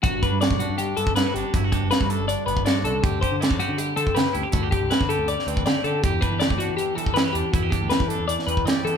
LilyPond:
<<
  \new Staff \with { instrumentName = "Clean electric guitar" } { \time 4/4 \key g \major \tempo 4 = 160 fis'8 b'8 d''8 fis'8 g'8 a'8 b'8 g'8 | fis'8 g'8 b'8 a'8 d''8 b'8 d''8 a'8 | g'8 c''8 d''8 fis'8 g'8 a'8 b'8 g'8 | fis'8 g'8 b'8 a'8 d''8 b'8 d''8 a'8 |
g'8 b'8 d''8 fis'8 g'8 a'8 b'8 g'8 | fis'8 g'8 b'8 a'8 d''8 b'8 d''8 a'8 | }
  \new Staff \with { instrumentName = "Clean electric guitar" } { \time 4/4 \key g \major << { fis'8 d'8 fis'8 d'4 b8 e'16 fis'16 d'8 | e'16 fis'16 d'8 fis'8 d'4 b8 fis'8 d'8 | g'8 g'8 e'16 fis'16 g'4 c'8 g'8 e'16 g'16 | e'16 g'16 g'8 e'16 fis'16 g'4 c'8 g'8 g'8 |
g'8 d'8 g'8 d'4 g8 e'16 g'16 d'8 | e'16 g'16 d'8 g'8 d'4 g8 g'8 b16 r16 | } \\ { g,2 d2 | g,2 d2 | d2 g2 | d2 g2 |
e,2 e2 | e,2 e2 | } >> }
  \new Staff \with { instrumentName = "Picked electric bass" } { \clef bass \time 4/4 \key g \major g,,8 r16 g,8 b,,16 r16 g,8. g,16 r16 g,16 r16 g,,16 r16 | g,,8 r16 fis,,16 r16 g,8 g,,8 r16 g,,8 g,8 c,8 | d,8 r16 d8 fis,16 r16 d8. d16 r16 d16 r16 d,16 r16 | d,8 r16 c,16 r16 d8 d,8 r16 d,8 d16 r16 d8 |
e,8 r16 e8 a,16 r16 e8. e16 r16 e16 r16 e,16 r16 | e,8 r16 d,16 r16 e8 e,8 r16 e,8 e16 r16 e8 | }
  \new DrumStaff \with { instrumentName = "Drums" } \drummode { \time 4/4 <hh bd>8 <hh bd>8 <hh sn>16 bd16 hh8 hh8 hh16 bd16 <hh sn>8 hh8 | <hh bd>8 <hh bd>8 <hh sn>16 bd16 hh8 hh8 hh16 bd16 <hh sn>8 hh8 | <hh bd>8 <hh bd>8 <hh sn>16 bd16 hh8 hh8 hh16 bd16 <hh sn>8 hh8 | <hh bd>8 <hh bd>8 <hh sn>16 bd16 hh8 hh16 sn16 hh16 bd16 <hh sn>8 hh8 |
<hh bd>8 <hh bd>8 <hh sn>16 bd16 hh8 hh8 hh16 bd16 <hh sn>8 hh8 | <hh bd>8 <hh bd>8 <hh sn>16 bd16 hh8 hh16 sn16 hh16 bd16 <hh sn>8 hh8 | }
>>